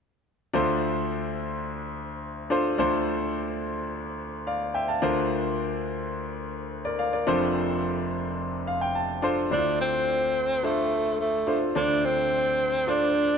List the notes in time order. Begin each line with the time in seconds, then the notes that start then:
0.53 D2 D3 D4 F4 A4 C5
2.50 D4 F4 A4 C5
2.78 D2 D3 D4 F4 A4 C5
4.47 D5 F5
4.74 E5 G5
4.88 F5 A5
5.02 D2 D3 D4 F4 A#4 C5
6.85 A#4 D5
6.99 D5 F5
7.13 A#4 D5
7.27 F1 F2 D4 F4 A4 C5
8.67 F5
8.81 G5
8.95 A5
9.22 D4 F4 A4 C5 C6
9.51 D2 D3 D4 E4 A4 C5
9.58 F4
9.81 C4
10.63 A3 D4 F4 A4 C5
11.21 A3
11.47 D4 F4 A4 C5
11.75 D2 D3 D4 F4 A4 C5
12.05 C4
12.87 D4 F4 A4 C5